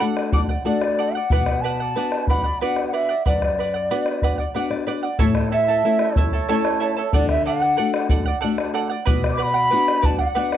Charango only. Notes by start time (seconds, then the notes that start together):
0.00 A4 D5 F#5
0.33 A4 D5 F#5
0.49 D5 F#5
0.65 A4 D5 F#5
0.99 A4 D5 F#5
1.15 D5 F#5
1.32 B4 D5 F#5
1.64 B4 D5 F#5
1.80 D5 F#5
1.96 B4 D5 F#5
2.29 B4 D5 F#5
2.44 D5 F#5
2.61 B4 D5 F#5
2.93 B4 D5 F#5
3.09 D5 F#5
3.26 B4 D5 F#5
3.59 B4 D5 F#5
3.74 D5 F#5
3.91 B4 D5 F#5
4.23 B4 D5 F#5
4.38 D5 F#5
4.54 B4 D5 F#5
4.87 B4 D5 F#5
5.03 D5 F#5
5.19 E4 A4 C#5 E5 A5
5.52 E4 A4 E5 A5
5.68 E4 A4 A5
5.85 E4 A4 E5 A5
6.17 E4 A4 E5 A5
6.33 E4 A4 A5
6.49 E4 A4 C#5 E5 A5
6.80 E4 A4 E5 A5
6.97 E4 A4 A5
7.13 A4 D5 F#5
7.46 A4 D5 F#5
7.62 D5 F#5
7.77 A4 D5 F#5
8.10 A4 D5 F#5
8.26 D5 F#5
8.41 A4 D5 F#5
8.74 A4 D5 F#5
8.90 D5 F#5
9.05 B4 D5 F#5
9.37 B4 D5 F#5
9.54 D5 F#5
9.70 B4 D5 F#5
10.02 B4 D5 F#5
10.19 D5 F#5
10.35 B4 D5 F#5